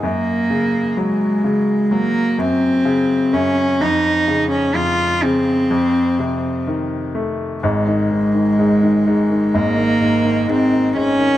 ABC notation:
X:1
M:4/4
L:1/16
Q:1/4=63
K:Abmix
V:1 name="Cello"
B,4 A,4 B,2 C4 D2 | E3 D F2 C6 z4 | A,8 B,4 C2 D2 |]
V:2 name="Grand piano" clef=bass
G,,2 D,2 G,2 D,2 G,2 G,,2 D,2 G,,2 | F,,2 D,2 F,,2 D,2 F,,2 C,2 E,2 =A,2 | [A,,,A,,] E, A,, E, A,, E, A,, E, [A,,,A,,] E, A,, E, A,, E, A,, E, |]